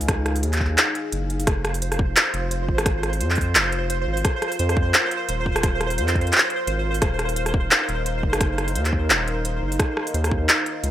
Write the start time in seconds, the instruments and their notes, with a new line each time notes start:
Already playing: sub bass C#2, analog synth pad D#4 G#4 F5
0.01 open hi-hat
0.08 kick, cross-stick, closed hi-hat
0.26 cross-stick, closed hi-hat
0.36 open hi-hat
0.43 sub bass D#2, closed hi-hat
0.53 clap, open hi-hat
0.57 clap
0.60 kick, clap
0.65 clap
0.78 clap, closed hi-hat
0.95 closed hi-hat
1.12 sub bass F#1, closed hi-hat
1.30 closed hi-hat
1.40 open hi-hat
1.47 sub bass F1, analog synth pad F4 C5 F5, synth texture C5, kick, cross-stick, closed hi-hat
1.65 cross-stick, closed hi-hat
1.74 open hi-hat
1.82 closed hi-hat
1.92 cross-stick, open hi-hat
1.99 kick
2.16 clap, closed hi-hat
2.34 sub bass F1, closed hi-hat
2.51 closed hi-hat
2.69 sub bass G#1, kick
2.78 cross-stick, open hi-hat
2.86 kick, cross-stick, closed hi-hat
3.03 cross-stick, closed hi-hat
3.13 open hi-hat
3.21 sub bass F2, closed hi-hat
3.30 clap, open hi-hat
3.35 kick, open hi-hat
3.41 open hi-hat
3.55 sub bass F1, clap, closed hi-hat
3.72 closed hi-hat
3.90 closed hi-hat
4.07 sub bass G#1
4.17 open hi-hat
4.25 analog synth pad A#4, kick, cross-stick, closed hi-hat
4.42 cross-stick, closed hi-hat
4.52 open hi-hat
4.59 sub bass F2, closed hi-hat
4.69 cross-stick, open hi-hat
4.77 kick
4.94 clap, closed hi-hat
5.11 closed hi-hat
5.29 sub bass D#1, closed hi-hat
5.46 kick
5.56 cross-stick, open hi-hat
5.63 kick, cross-stick, closed hi-hat
5.81 cross-stick, closed hi-hat
5.90 open hi-hat
5.98 sub bass F2, closed hi-hat
6.08 clap, open hi-hat
6.15 kick, closed hi-hat
6.21 closed hi-hat
6.27 closed hi-hat
6.33 clap, closed hi-hat
6.36 clap
6.38 clap
6.50 closed hi-hat
6.67 sub bass G#1, closed hi-hat
6.94 open hi-hat
7.02 sub bass D#1, analog synth pad D#4 A#4, kick, cross-stick, closed hi-hat
7.19 cross-stick, closed hi-hat
7.29 open hi-hat
7.36 closed hi-hat
7.46 cross-stick, open hi-hat
7.54 kick
7.71 clap, closed hi-hat
7.89 sub bass D#1, closed hi-hat
8.06 closed hi-hat
8.23 sub bass F#1, kick
8.33 cross-stick, open hi-hat
8.41 kick, cross-stick, closed hi-hat
8.58 cross-stick, closed hi-hat
8.68 open hi-hat
8.75 sub bass D#2, closed hi-hat
8.85 clap, open hi-hat
8.93 kick
9.10 sub bass D#1, clap, closed hi-hat
9.28 closed hi-hat
9.45 closed hi-hat
9.62 sub bass F#1
9.72 open hi-hat
9.79 kick, cross-stick, closed hi-hat
9.97 cross-stick
10.07 open hi-hat
10.14 sub bass D#2, closed hi-hat
10.24 cross-stick, open hi-hat
10.31 kick
10.49 clap, closed hi-hat
10.66 closed hi-hat
10.83 sub bass C#2, closed hi-hat